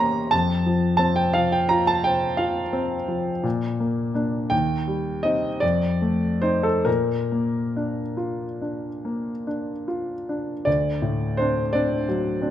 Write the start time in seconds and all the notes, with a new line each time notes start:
Already playing: E2 C#4 G4 A#4 A#5 C6 C#6
0.00 A#3
0.31 F2 A5
0.66 F3
0.97 C4 A5
1.16 G5
1.34 F3 F5
1.52 G5
1.69 F4 A#5
1.87 A5
2.04 C5 G5
2.37 F4 F5
2.73 C4
3.08 F3
3.43 A#2
3.80 A#3
4.14 A#3 D4
4.50 D#2 G5
4.87 G3
5.23 C4 D#4 D#5
5.60 F2 D5
6.02 A3
6.42 C4 D#4 C5
6.63 A4
6.85 A#2 A#4
7.32 A#3
7.76 D4
8.17 F4
8.62 D4
9.05 A#3
9.47 D4
9.88 F4
10.29 D4
10.65 D2 D5
11.02 A2
11.37 C4 D4 C5
11.73 C4 D4 D5
12.09 F#3
12.41 C4 D4